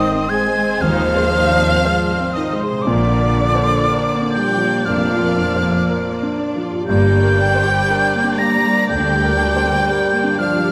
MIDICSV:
0, 0, Header, 1, 11, 480
1, 0, Start_track
1, 0, Tempo, 1023891
1, 1337, Time_signature, 4, 2, 24, 8
1, 1337, Tempo, 1005025
1, 5094, End_track
2, 0, Start_track
2, 0, Title_t, "Flute"
2, 0, Program_c, 0, 73
2, 0, Note_on_c, 0, 87, 117
2, 138, Note_on_c, 0, 92, 99
2, 145, Note_off_c, 0, 87, 0
2, 381, Note_on_c, 0, 89, 109
2, 388, Note_off_c, 0, 92, 0
2, 1094, Note_on_c, 0, 87, 87
2, 1101, Note_off_c, 0, 89, 0
2, 1207, Note_off_c, 0, 87, 0
2, 1210, Note_on_c, 0, 84, 104
2, 1322, Note_on_c, 0, 86, 106
2, 1329, Note_off_c, 0, 84, 0
2, 2038, Note_off_c, 0, 86, 0
2, 2041, Note_on_c, 0, 91, 112
2, 2294, Note_on_c, 0, 89, 92
2, 2301, Note_off_c, 0, 91, 0
2, 3016, Note_off_c, 0, 89, 0
2, 3257, Note_on_c, 0, 91, 123
2, 3979, Note_on_c, 0, 94, 114
2, 3986, Note_off_c, 0, 91, 0
2, 4216, Note_off_c, 0, 94, 0
2, 4219, Note_on_c, 0, 91, 122
2, 4937, Note_on_c, 0, 89, 99
2, 4944, Note_off_c, 0, 91, 0
2, 5094, Note_off_c, 0, 89, 0
2, 5094, End_track
3, 0, Start_track
3, 0, Title_t, "Violin section"
3, 0, Program_c, 1, 48
3, 0, Note_on_c, 1, 75, 106
3, 119, Note_off_c, 1, 75, 0
3, 140, Note_on_c, 1, 80, 97
3, 375, Note_on_c, 1, 77, 123
3, 380, Note_off_c, 1, 80, 0
3, 1097, Note_off_c, 1, 77, 0
3, 1100, Note_on_c, 1, 75, 76
3, 1216, Note_off_c, 1, 75, 0
3, 1219, Note_on_c, 1, 72, 85
3, 1337, Note_off_c, 1, 72, 0
3, 1337, Note_on_c, 1, 74, 109
3, 2056, Note_on_c, 1, 79, 95
3, 2057, Note_off_c, 1, 74, 0
3, 2297, Note_off_c, 1, 79, 0
3, 2298, Note_on_c, 1, 77, 90
3, 3018, Note_off_c, 1, 77, 0
3, 3260, Note_on_c, 1, 79, 113
3, 3966, Note_off_c, 1, 79, 0
3, 3977, Note_on_c, 1, 82, 100
3, 4217, Note_on_c, 1, 79, 113
3, 4219, Note_off_c, 1, 82, 0
3, 4934, Note_off_c, 1, 79, 0
3, 4938, Note_on_c, 1, 77, 90
3, 5094, Note_off_c, 1, 77, 0
3, 5094, End_track
4, 0, Start_track
4, 0, Title_t, "Violin section"
4, 0, Program_c, 2, 48
4, 0, Note_on_c, 2, 72, 86
4, 1322, Note_off_c, 2, 72, 0
4, 1355, Note_on_c, 2, 74, 84
4, 3258, Note_off_c, 2, 74, 0
4, 3264, Note_on_c, 2, 74, 87
4, 5094, Note_off_c, 2, 74, 0
4, 5094, End_track
5, 0, Start_track
5, 0, Title_t, "Grand piano"
5, 0, Program_c, 3, 0
5, 0, Control_c, 3, 64, 127
5, 0, Note_on_c, 3, 44, 74
5, 0, Note_on_c, 3, 72, 64
5, 0, Note_on_c, 3, 75, 58
5, 57, Note_on_c, 3, 60, 58
5, 155, Note_off_c, 3, 72, 0
5, 223, Note_on_c, 3, 56, 57
5, 314, Note_off_c, 3, 60, 0
5, 358, Note_off_c, 3, 44, 0
5, 380, Note_on_c, 3, 51, 60
5, 477, Note_off_c, 3, 56, 0
5, 543, Note_on_c, 3, 72, 63
5, 636, Note_off_c, 3, 51, 0
5, 703, Note_on_c, 3, 74, 52
5, 797, Note_off_c, 3, 72, 0
5, 861, Note_off_c, 3, 74, 0
5, 865, Note_on_c, 3, 72, 62
5, 1021, Note_on_c, 3, 60, 60
5, 1118, Note_off_c, 3, 72, 0
5, 1184, Note_on_c, 3, 56, 58
5, 1275, Note_off_c, 3, 60, 0
5, 1340, Note_off_c, 3, 56, 0
5, 1344, Note_on_c, 3, 46, 78
5, 1346, Control_c, 3, 64, 0
5, 1348, Note_off_c, 3, 75, 0
5, 1436, Control_c, 3, 64, 127
5, 1509, Note_on_c, 3, 70, 58
5, 1668, Note_on_c, 3, 72, 56
5, 1758, Note_off_c, 3, 70, 0
5, 1822, Note_off_c, 3, 72, 0
5, 1829, Note_on_c, 3, 70, 63
5, 1988, Note_on_c, 3, 62, 55
5, 2079, Note_off_c, 3, 70, 0
5, 2150, Note_on_c, 3, 53, 54
5, 2240, Note_off_c, 3, 62, 0
5, 2282, Note_off_c, 3, 46, 0
5, 2307, Note_on_c, 3, 58, 59
5, 2401, Note_off_c, 3, 53, 0
5, 2470, Note_on_c, 3, 70, 61
5, 2559, Note_off_c, 3, 58, 0
5, 2628, Note_on_c, 3, 72, 48
5, 2721, Note_off_c, 3, 70, 0
5, 2783, Note_off_c, 3, 72, 0
5, 2786, Note_on_c, 3, 70, 61
5, 2948, Note_on_c, 3, 62, 60
5, 3038, Note_off_c, 3, 70, 0
5, 3106, Note_on_c, 3, 53, 60
5, 3198, Note_off_c, 3, 62, 0
5, 3261, Note_off_c, 3, 53, 0
5, 3266, Control_c, 3, 64, 0
5, 3266, Note_on_c, 3, 43, 74
5, 3353, Control_c, 3, 64, 127
5, 3426, Note_on_c, 3, 70, 59
5, 3581, Note_on_c, 3, 72, 58
5, 3681, Note_off_c, 3, 70, 0
5, 3742, Note_off_c, 3, 72, 0
5, 3743, Note_on_c, 3, 70, 60
5, 3908, Note_on_c, 3, 62, 59
5, 4000, Note_off_c, 3, 70, 0
5, 4066, Note_on_c, 3, 55, 58
5, 4161, Note_off_c, 3, 62, 0
5, 4208, Note_off_c, 3, 43, 0
5, 4223, Note_on_c, 3, 50, 60
5, 4318, Note_off_c, 3, 55, 0
5, 4382, Note_on_c, 3, 70, 62
5, 4475, Note_off_c, 3, 50, 0
5, 4539, Note_on_c, 3, 72, 54
5, 4634, Note_off_c, 3, 70, 0
5, 4698, Note_off_c, 3, 72, 0
5, 4700, Note_on_c, 3, 70, 63
5, 4862, Note_on_c, 3, 62, 58
5, 4954, Note_off_c, 3, 70, 0
5, 5021, Note_on_c, 3, 55, 61
5, 5094, Note_off_c, 3, 55, 0
5, 5094, Note_off_c, 3, 62, 0
5, 5094, End_track
6, 0, Start_track
6, 0, Title_t, "Harp"
6, 0, Program_c, 4, 46
6, 0, Note_on_c, 4, 44, 75
6, 1160, Note_off_c, 4, 44, 0
6, 1259, Note_on_c, 4, 46, 68
6, 1278, Note_on_c, 4, 62, 56
6, 1300, Note_on_c, 4, 65, 60
6, 1319, Note_on_c, 4, 70, 57
6, 3120, Note_off_c, 4, 46, 0
6, 3140, Note_off_c, 4, 62, 0
6, 3162, Note_off_c, 4, 65, 0
6, 3177, Note_on_c, 4, 43, 65
6, 3182, Note_off_c, 4, 70, 0
6, 3198, Note_on_c, 4, 62, 59
6, 3219, Note_on_c, 4, 55, 57
6, 3240, Note_on_c, 4, 70, 54
6, 5040, Note_off_c, 4, 43, 0
6, 5060, Note_off_c, 4, 62, 0
6, 5082, Note_off_c, 4, 55, 0
6, 5094, Note_off_c, 4, 70, 0
6, 5094, End_track
7, 0, Start_track
7, 0, Title_t, "Viola section"
7, 0, Program_c, 5, 48
7, 26, Note_on_c, 5, 60, 72
7, 142, Note_off_c, 5, 60, 0
7, 148, Note_on_c, 5, 56, 68
7, 263, Note_off_c, 5, 56, 0
7, 265, Note_on_c, 5, 60, 73
7, 382, Note_off_c, 5, 60, 0
7, 392, Note_on_c, 5, 63, 81
7, 498, Note_off_c, 5, 63, 0
7, 515, Note_on_c, 5, 68, 70
7, 627, Note_off_c, 5, 68, 0
7, 639, Note_on_c, 5, 63, 74
7, 749, Note_off_c, 5, 63, 0
7, 755, Note_on_c, 5, 60, 72
7, 867, Note_off_c, 5, 60, 0
7, 872, Note_on_c, 5, 56, 74
7, 985, Note_off_c, 5, 56, 0
7, 994, Note_on_c, 5, 60, 65
7, 1106, Note_off_c, 5, 60, 0
7, 1110, Note_on_c, 5, 63, 70
7, 1224, Note_off_c, 5, 63, 0
7, 1236, Note_on_c, 5, 68, 66
7, 1346, Note_off_c, 5, 68, 0
7, 1348, Note_on_c, 5, 53, 76
7, 1348, Note_on_c, 5, 58, 70
7, 1455, Note_off_c, 5, 53, 0
7, 1459, Note_off_c, 5, 58, 0
7, 1465, Note_on_c, 5, 58, 66
7, 1580, Note_off_c, 5, 58, 0
7, 1587, Note_on_c, 5, 62, 77
7, 1701, Note_off_c, 5, 62, 0
7, 1708, Note_on_c, 5, 65, 70
7, 1822, Note_off_c, 5, 65, 0
7, 1823, Note_on_c, 5, 62, 70
7, 1939, Note_off_c, 5, 62, 0
7, 1947, Note_on_c, 5, 58, 68
7, 2062, Note_off_c, 5, 58, 0
7, 2067, Note_on_c, 5, 53, 67
7, 2179, Note_on_c, 5, 58, 69
7, 2182, Note_off_c, 5, 53, 0
7, 2299, Note_off_c, 5, 58, 0
7, 2305, Note_on_c, 5, 62, 80
7, 2413, Note_off_c, 5, 62, 0
7, 2428, Note_on_c, 5, 65, 76
7, 2543, Note_off_c, 5, 65, 0
7, 2548, Note_on_c, 5, 62, 71
7, 2658, Note_on_c, 5, 58, 66
7, 2664, Note_off_c, 5, 62, 0
7, 2778, Note_off_c, 5, 58, 0
7, 2785, Note_on_c, 5, 53, 68
7, 2900, Note_on_c, 5, 58, 65
7, 2901, Note_off_c, 5, 53, 0
7, 3018, Note_on_c, 5, 62, 67
7, 3019, Note_off_c, 5, 58, 0
7, 3137, Note_off_c, 5, 62, 0
7, 3139, Note_on_c, 5, 65, 69
7, 3257, Note_on_c, 5, 55, 74
7, 3258, Note_off_c, 5, 65, 0
7, 3259, Note_on_c, 5, 58, 67
7, 3369, Note_off_c, 5, 55, 0
7, 3380, Note_off_c, 5, 58, 0
7, 3386, Note_on_c, 5, 58, 67
7, 3503, Note_off_c, 5, 58, 0
7, 3503, Note_on_c, 5, 62, 76
7, 3622, Note_off_c, 5, 62, 0
7, 3626, Note_on_c, 5, 67, 69
7, 3745, Note_off_c, 5, 67, 0
7, 3747, Note_on_c, 5, 62, 72
7, 3866, Note_off_c, 5, 62, 0
7, 3871, Note_on_c, 5, 58, 72
7, 3988, Note_off_c, 5, 58, 0
7, 3990, Note_on_c, 5, 55, 71
7, 4107, Note_off_c, 5, 55, 0
7, 4111, Note_on_c, 5, 58, 69
7, 4223, Note_on_c, 5, 62, 78
7, 4226, Note_off_c, 5, 58, 0
7, 4333, Note_off_c, 5, 62, 0
7, 4344, Note_on_c, 5, 67, 75
7, 4461, Note_off_c, 5, 67, 0
7, 4461, Note_on_c, 5, 62, 75
7, 4579, Note_off_c, 5, 62, 0
7, 4582, Note_on_c, 5, 58, 68
7, 4700, Note_off_c, 5, 58, 0
7, 4705, Note_on_c, 5, 55, 72
7, 4821, Note_off_c, 5, 55, 0
7, 4821, Note_on_c, 5, 58, 71
7, 4939, Note_off_c, 5, 58, 0
7, 4940, Note_on_c, 5, 62, 69
7, 5057, Note_off_c, 5, 62, 0
7, 5063, Note_on_c, 5, 67, 69
7, 5094, Note_off_c, 5, 67, 0
7, 5094, End_track
8, 0, Start_track
8, 0, Title_t, "French horn section"
8, 0, Program_c, 6, 60
8, 0, Note_on_c, 6, 51, 115
8, 115, Note_off_c, 6, 51, 0
8, 137, Note_on_c, 6, 56, 92
8, 378, Note_off_c, 6, 56, 0
8, 380, Note_on_c, 6, 53, 107
8, 1099, Note_off_c, 6, 53, 0
8, 1109, Note_on_c, 6, 51, 82
8, 1221, Note_on_c, 6, 48, 83
8, 1223, Note_off_c, 6, 51, 0
8, 1336, Note_off_c, 6, 48, 0
8, 1341, Note_on_c, 6, 50, 103
8, 2058, Note_off_c, 6, 50, 0
8, 2060, Note_on_c, 6, 55, 82
8, 2300, Note_off_c, 6, 55, 0
8, 2304, Note_on_c, 6, 53, 84
8, 3021, Note_off_c, 6, 53, 0
8, 3263, Note_on_c, 6, 55, 112
8, 3968, Note_off_c, 6, 55, 0
8, 3982, Note_on_c, 6, 58, 90
8, 4222, Note_off_c, 6, 58, 0
8, 4222, Note_on_c, 6, 55, 101
8, 4935, Note_on_c, 6, 53, 94
8, 4936, Note_off_c, 6, 55, 0
8, 5094, Note_off_c, 6, 53, 0
8, 5094, End_track
9, 0, Start_track
9, 0, Title_t, "Timpani"
9, 0, Program_c, 7, 47
9, 0, Note_on_c, 7, 44, 107
9, 121, Note_off_c, 7, 44, 0
9, 5094, End_track
10, 0, Start_track
10, 0, Title_t, "Cello section"
10, 0, Program_c, 8, 48
10, 382, Note_on_c, 8, 39, 87
10, 780, Note_off_c, 8, 39, 0
10, 1342, Note_on_c, 8, 46, 87
10, 1738, Note_off_c, 8, 46, 0
10, 2300, Note_on_c, 8, 41, 82
10, 2699, Note_off_c, 8, 41, 0
10, 3263, Note_on_c, 8, 43, 87
10, 3663, Note_off_c, 8, 43, 0
10, 4222, Note_on_c, 8, 38, 85
10, 4617, Note_off_c, 8, 38, 0
10, 5094, End_track
11, 0, Start_track
11, 0, Title_t, "Double bass section"
11, 0, Program_c, 10, 48
11, 379, Note_on_c, 10, 39, 89
11, 779, Note_off_c, 10, 39, 0
11, 1341, Note_on_c, 10, 34, 85
11, 1737, Note_off_c, 10, 34, 0
11, 2302, Note_on_c, 10, 29, 83
11, 2701, Note_off_c, 10, 29, 0
11, 3259, Note_on_c, 10, 31, 92
11, 3661, Note_off_c, 10, 31, 0
11, 4226, Note_on_c, 10, 38, 83
11, 4619, Note_off_c, 10, 38, 0
11, 5094, End_track
0, 0, End_of_file